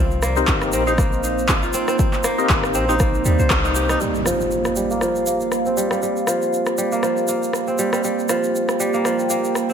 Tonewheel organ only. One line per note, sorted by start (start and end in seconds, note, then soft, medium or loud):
0.37 0.84 C4 medium
0.37 0.84 D#4 medium
0.37 0.84 G4 medium
0.37 0.84 A#4 loud
0.87 0.94 C4 medium
0.87 0.94 D#4 medium
0.87 0.94 G4 medium
0.87 0.94 C5 loud
2.38 2.85 C4 medium
2.38 2.85 D#4 medium
2.38 2.85 G4 medium
2.38 2.85 A#4 loud
2.89 2.95 C4 medium
2.89 2.95 D#4 medium
2.89 2.95 G4 medium
2.89 2.95 C5 loud